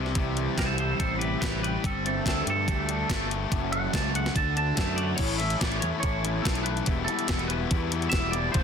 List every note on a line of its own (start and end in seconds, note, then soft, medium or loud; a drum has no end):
0.00 0.47 C2 medium
0.00 0.17 C3 medium
0.00 1.83 C3 medium
0.00 1.82 E3 medium
0.00 1.81 G3 medium
0.00 1.84 E4 medium
0.00 0.80 G4 medium
0.00 1.84 G4 medium
0.00 0.32 D5 loud
0.06 snare soft
0.15 1.22 C3 medium
0.15 kick loud
0.15 closed hi-hat medium
0.37 1.01 G3 medium
0.37 closed hi-hat medium
0.58 0.93 C2 medium
0.58 1.21 E4 medium
0.58 0.77 A4 medium
0.58 0.78 C5 loud
0.58 kick loud
0.58 snare loud
0.58 closed hi-hat medium
0.78 1.62 G4 medium
0.78 0.98 A4 medium
0.78 0.99 C5 medium
0.78 closed hi-hat medium
0.99 1.35 A1 loud
0.99 1.42 G3 medium
0.99 1.18 A4 medium
0.99 1.19 C5 medium
0.99 kick loud
0.99 closed hi-hat medium
1.18 1.84 E4 medium
1.18 1.39 G4 medium
1.18 1.40 B4 medium
1.18 closed hi-hat medium
1.40 1.77 A1 medium
1.40 1.83 G3 medium
1.40 1.60 G4 medium
1.40 1.61 B4 medium
1.40 kick loud
1.40 snare loud
1.40 closed hi-hat medium
1.63 1.84 G4 medium
1.63 1.82 G4 medium
1.63 1.83 B4 medium
1.63 closed hi-hat medium
1.82 2.19 G1 loud
1.82 3.51 G3 medium
1.82 2.89 G3 medium
1.82 3.52 A3 medium
1.82 2.04 C4 medium
1.82 3.52 D4 medium
1.82 3.53 G4 medium
1.82 2.05 A4 medium
1.82 kick loud
1.82 closed hi-hat medium
2.05 2.68 A3 medium
2.05 2.25 C4 medium
2.05 2.26 A4 medium
2.05 closed hi-hat medium
2.26 2.43 D2 medium
2.26 2.46 C4 medium
2.26 2.88 D4 medium
2.26 2.47 A4 medium
2.26 kick loud
2.26 snare loud
2.26 closed hi-hat medium
2.47 2.68 G2 medium
2.47 3.29 G4 medium
2.47 3.30 A4 loud
2.47 closed hi-hat medium
2.68 3.03 D2 medium
2.68 3.09 A3 medium
2.68 kick loud
2.68 closed hi-hat medium
2.89 3.52 D4 medium
2.89 closed hi-hat medium
3.09 3.45 G1 medium
3.09 3.72 A3 medium
3.09 kick loud
3.09 snare loud
3.09 closed hi-hat loud
3.30 3.51 G4 medium
3.30 closed hi-hat medium
3.51 3.87 F#1 loud
3.51 4.35 F#2 medium
3.51 4.36 F#2 medium
3.51 4.36 C#3 medium
3.51 4.33 F#3 medium
3.51 4.34 A3 medium
3.51 4.36 C#4 medium
3.51 4.36 F#4 medium
3.51 kick loud
3.51 closed hi-hat medium
3.72 4.36 A3 medium
3.72 3.93 F#5 loud
3.72 closed hi-hat medium
3.93 4.29 C#2 medium
3.93 4.35 C#4 medium
3.93 4.15 A5 medium
3.93 kick loud
3.93 snare loud
3.93 closed hi-hat medium
4.14 4.35 F#4 medium
4.14 4.36 F#5 medium
4.14 closed hi-hat medium
4.26 snare medium
4.34 4.71 D2 loud
4.34 5.19 D3 medium
4.34 5.19 A3 medium
4.34 5.20 D4 medium
4.34 5.20 F#4 medium
4.34 4.56 A5 medium
4.34 kick loud
4.34 closed hi-hat medium
4.57 5.20 D4 medium
4.57 5.18 A5 loud
4.57 closed hi-hat medium
4.76 5.13 F#2 medium
4.76 5.19 A3 medium
4.76 4.96 E5 medium
4.76 kick loud
4.76 snare loud
4.76 closed hi-hat medium
4.96 5.19 F#4 medium
4.96 5.15 D5 medium
4.96 closed hi-hat medium
5.16 5.54 A1 medium
5.16 5.39 A2 medium
5.16 5.41 E3 loud
5.16 6.85 A4 medium
5.16 5.38 C#5 medium
5.16 6.85 C#5 medium
5.16 8.51 B5 medium
5.16 kick loud
5.16 closed hi-hat loud
5.16 crash loud
5.20 5.41 A3 loud
5.20 5.41 C#4 loud
5.20 5.42 E4 loud
5.38 5.60 A2 medium
5.38 5.61 E3 medium
5.38 5.61 A3 medium
5.38 5.61 C#4 medium
5.38 5.62 E4 medium
5.38 5.59 E5 medium
5.38 closed hi-hat medium
5.50 closed hi-hat medium
5.59 5.79 A1 medium
5.59 5.82 A2 medium
5.59 5.83 E3 loud
5.59 5.83 A3 medium
5.59 5.82 C#4 loud
5.59 5.83 E4 loud
5.59 5.80 D5 medium
5.59 kick loud
5.59 snare loud
5.59 closed hi-hat loud
5.72 closed hi-hat soft
5.80 5.91 E2 medium
5.80 6.02 A2 medium
5.80 6.03 E3 medium
5.80 6.03 A3 medium
5.80 6.03 C#4 loud
5.80 6.04 E4 medium
5.80 5.86 C#5 medium
5.80 closed hi-hat medium
6.00 6.39 A1 loud
6.00 6.23 A2 loud
6.00 6.45 C#5 medium
6.00 kick loud
6.00 closed hi-hat loud
6.04 6.23 E3 medium
6.04 6.24 A3 loud
6.04 6.25 C#4 loud
6.04 6.24 E4 loud
6.24 6.44 A2 medium
6.24 6.44 E3 medium
6.24 6.45 A3 medium
6.24 6.46 C#4 medium
6.24 6.46 E4 medium
6.24 closed hi-hat medium
6.42 6.81 B1 loud
6.42 6.64 A2 medium
6.42 6.65 E3 medium
6.42 6.63 A4 medium
6.42 kick loud
6.42 closed hi-hat loud
6.47 6.65 A3 loud
6.47 6.66 C#4 medium
6.47 6.67 E4 loud
6.47 snare loud
6.55 closed hi-hat soft
6.63 6.86 A2 medium
6.63 6.86 E3 medium
6.63 6.86 A3 medium
6.63 6.86 C#4 loud
6.63 7.04 B4 medium
6.63 closed hi-hat medium
6.68 6.87 E4 medium
6.77 closed hi-hat soft
6.86 7.05 E1 loud
6.86 7.06 E2 loud
6.86 7.07 B2 loud
6.86 7.07 E3 loud
6.86 7.09 G3 loud
6.86 7.08 B3 loud
6.86 7.08 E4 loud
6.86 8.63 G4 medium
6.86 8.54 E5 medium
6.86 kick loud
6.86 closed hi-hat loud
7.04 7.27 E2 medium
7.04 7.28 B2 medium
7.04 7.28 E3 medium
7.04 7.47 A4 medium
7.04 closed hi-hat medium
7.09 7.30 G3 medium
7.09 7.29 B3 medium
7.09 7.29 E4 medium
7.19 closed hi-hat soft
7.28 7.64 E1 medium
7.28 7.48 E2 medium
7.28 7.49 B2 medium
7.28 7.49 E3 loud
7.28 7.49 G3 medium
7.28 7.50 B3 medium
7.28 7.50 E4 loud
7.28 kick loud
7.28 snare loud
7.28 closed hi-hat loud
7.39 closed hi-hat soft
7.48 7.70 E2 medium
7.48 7.70 B2 medium
7.48 7.71 E3 medium
7.48 7.71 G3 medium
7.48 7.72 B3 loud
7.48 7.72 E4 loud
7.48 7.88 B4 medium
7.48 closed hi-hat medium
7.71 8.06 E2 loud
7.71 7.91 E2 medium
7.71 7.92 B2 loud
7.71 7.92 E3 loud
7.71 7.92 G3 medium
7.71 7.93 B3 loud
7.71 7.93 E4 medium
7.71 kick loud
7.71 closed hi-hat loud
7.92 8.12 E2 medium
7.92 8.13 B2 medium
7.92 8.13 E3 medium
7.92 8.13 G3 medium
7.92 8.14 B3 medium
7.92 8.14 E4 medium
7.92 closed hi-hat medium
8.02 closed hi-hat soft
8.10 8.48 E1 medium
8.10 8.33 E2 loud
8.10 8.33 E5 loud
8.10 kick loud
8.10 snare loud
8.10 closed hi-hat loud
8.14 8.33 B2 loud
8.14 8.34 E3 loud
8.14 8.34 G3 loud
8.14 8.35 B3 medium
8.14 8.35 E4 loud
8.31 8.54 E2 medium
8.31 8.54 B2 medium
8.31 8.52 D5 medium
8.31 closed hi-hat medium
8.35 8.55 E3 medium
8.35 8.54 G3 loud
8.35 8.55 B3 medium
8.35 8.55 E4 loud
8.52 8.63 F1 loud
8.52 8.63 F3 loud
8.52 8.63 C5 medium
8.52 8.63 F5 medium
8.52 8.63 C6 medium
8.52 kick loud
8.52 closed hi-hat loud
8.56 8.63 G3 loud
8.56 8.63 C4 loud
8.56 8.63 F4 loud